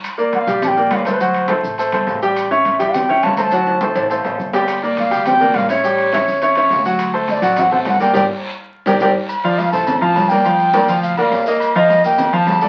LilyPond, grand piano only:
\new Staff \with { instrumentName = "Grand piano" } { \time 4/4 \key g \minor \tempo 4 = 208 r8 <bes bes' d''>4 <g g' g''>4 <bes bes' d''>4 <a a' c''>8 | <fis fis' fis''>4 <a a' c''>4 <a a' c''>8 <a a' c''>4 <g g' g''>8~ | <g g' g''>8 <cis' cis'' e''>4 <g g' g''>4 <cis' cis'' e''>4 <a a' c''>8 | <fis fis' fis''>4 <a a' c''>4 <a a' c''>8 <a a' c''>4 <g g' g''>8~ |
<g g' g''>8 <bes bes' d''>4 <g g' g''>4 <bes bes' d''>4 <cis' cis'' e''>8 | <g g' g''>4 <cis' cis'' e''>4 <cis' cis'' e''>8 <cis' cis'' e''>4 <fis fis' fis''>8~ | <fis fis' fis''>8 <a a' c''>4 <fis fis' fis''>4 <a a' c''>4 <bes bes' d''>8 | <g' bes' d''>8 r2 <g' bes' d''>8 <g' bes' d''>8 r8 |
r8 <f f' f''>4 <a a' c''>4 <f f' f''>4 <bes bes' d''>8 | <f f' f''>4 <bes bes' d''>8 <f f' f''>4 <bes bes' d''>4 <bes bes' ees''>8~ | <bes bes' ees''>8 <f f' f''>4 <bes bes' ees''>4 <f f' f''>4 <a a' d''>8 | }